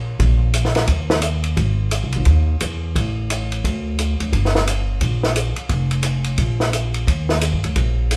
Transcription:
Already playing: A#1
0.20 A#1, kick, ride
0.54 hi-hat pedal, ride
0.65 snare
0.75 snare, ride
0.87 D#2, kick, ride
1.10 snare
1.22 hi-hat pedal, ride
1.44 ride
1.57 G#1, kick, ride
1.91 hi-hat pedal, ride
2.04 C2
2.12 G1, ride
2.25 D#2, kick, ride
2.60 E2, hi-hat pedal, ride
2.95 A1, kick, ride
3.30 hi-hat pedal, ride
3.52 ride
3.64 D2, kick, ride
3.99 hi-hat pedal, ride
4.20 D2, ride
4.33 G1, kick, ride
4.45 snare
4.55 snare
4.67 hi-hat pedal, ride
5.01 A#1, kick, ride
5.23 snare
5.36 hi-hat pedal, ride
5.56 muted upright bass stroke, ride
5.69 F1, kick, ride
5.91 ride
6.03 hi-hat pedal, ride
6.24 ride
6.38 A#1, kick, ride
6.60 snare
6.73 hi-hat pedal, ride
6.94 ride
7.07 D#2, kick, ride
7.29 snare
7.41 hi-hat pedal, ride
7.53 G2
7.64 D2, ride
7.76 A#1, kick, ride
8.11 hi-hat pedal, ride

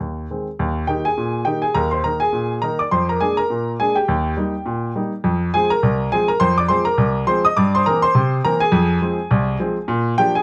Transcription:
0.00 D#2
0.30 D#3 G#3 C4
0.59 D#2
0.87 D#3 A#3 D#4 G4 G5
1.05 G#4 G#5
1.18 A#2
1.45 D#3 A#3 D#4 G4 G5
1.62 G#4 G#5
1.74 D#2 A#4 A#5
1.91 C5 C6
2.04 D#3 A#3 D#4 A#4 A#5
2.20 G#4 G#5
2.33 A#2
2.62 D#3 A#3 D#4 A#4 A#5
2.79 D5 D6
2.91 F2 C5 C6
3.09 A#4 A#5
3.20 G#3 A#3 D4 G#4 G#5
3.37 A#4 A#5
3.50 A#2
3.80 G#3 A#3 D4 G#4 G#5
3.96 G4 G5
4.08 D#2
4.37 G3 A#3 D#4
4.66 A#2
4.95 G3 A#3 D#4
5.24 F2
5.54 F3 G#3 C4 G#4 G#5
5.70 A#4 A#5
5.83 C2
6.12 F3 G#3 C4 G#4 G#5
6.28 A#4 A#5
6.40 F2 C5 C6
6.58 D5 D6
6.68 F3 G#3 C4 C5 C6
6.85 A#4 A#5
6.98 C2
7.27 F3 G#3 C4 C5 C6
7.45 D#5 D#6
7.57 G2 D5 D6
7.75 C5 C6
7.86 E3 A#3 C4 A#4 A#5
8.02 C5 C6
8.15 C3
8.45 E3 A#3 C4 A#4 A#5
8.60 G#4 G#5
8.72 F2
9.01 F3 G#3 C4
9.31 C2
9.59 F3 G#3 C4
9.88 A#2
10.18 F3 A#3 D4 G4 G5
10.35 G#4 G#5

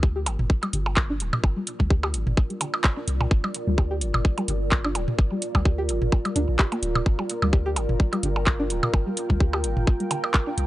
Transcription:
Already playing: D2 F4 A#4 C5
0.03 G4, kick
0.16 G4
0.26 G1 D5, closed hi-hat, percussion blips
0.39 G1, mid tom
0.50 kick
0.63 G3, closed hi-hat, percussion blips
0.73 G1 D3, closed hi-hat
0.86 percussion blips
0.97 kick, clap
1.10 D4
1.20 D1, closed hi-hat
1.33 mid tom, percussion blips
1.44 G1, kick, percussion blips
1.56 G3
1.67 closed hi-hat
1.80 D2 G3, kick
1.90 G4, kick
2.03 G4, percussion blips
2.14 G1, closed hi-hat
2.27 G1, mid tom
2.37 kick
2.50 G3, closed hi-hat
2.61 D3, closed hi-hat, percussion blips
2.74 percussion blips
2.84 kick, clap
2.97 D4
3.08 C2, closed hi-hat
3.21 mid tom, percussion blips
3.31 G1, kick
3.44 G3, percussion blips
3.54 closed hi-hat
3.67 D2 G3
3.78 G4, kick, percussion blips
3.91 G4
4.01 G1, closed hi-hat
4.14 G1, mid tom, percussion blips
4.25 kick
4.38 G3, closed hi-hat, percussion blips
4.48 G1 D3, closed hi-hat
4.72 kick, clap
4.84 D4, percussion blips
4.95 D1, closed hi-hat, percussion blips
5.08 mid tom
5.19 G1, kick
5.31 G3
5.42 closed hi-hat
5.55 D2 G3, kick, percussion blips
5.65 G4, kick
5.78 G4
5.89 G1, closed hi-hat
6.02 G1, mid tom
6.12 kick, percussion blips
6.25 G3, closed hi-hat, percussion blips
6.36 D2 D4, closed hi-hat
6.49 A#1
6.59 G4, kick, clap
6.72 A#3, closed hi-hat, percussion blips
6.83 D1, closed hi-hat
6.95 mid tom, percussion blips
7.06 G1, kick
7.19 G3, percussion blips
7.29 closed hi-hat
7.42 D2 G3, percussion blips
7.53 G4, kick
7.66 G4
7.76 G1 G5, closed hi-hat, percussion blips
7.89 G1, mid tom
8.00 kick
8.13 G3, closed hi-hat, percussion blips
8.23 G1 D3, closed hi-hat
8.36 percussion blips
8.47 kick, clap
8.60 D4
8.70 D1, closed hi-hat
8.83 mid tom, percussion blips
8.94 G1, kick, percussion blips
9.06 G3
9.17 closed hi-hat
9.30 D2 G3, kick
9.40 G4, kick
9.53 G4, percussion blips
9.64 G1, closed hi-hat
9.77 G1, mid tom
9.87 kick
10.00 G3, closed hi-hat
10.11 D3, closed hi-hat, percussion blips
10.24 percussion blips
10.34 kick, clap
10.47 D4
10.58 C2, closed hi-hat

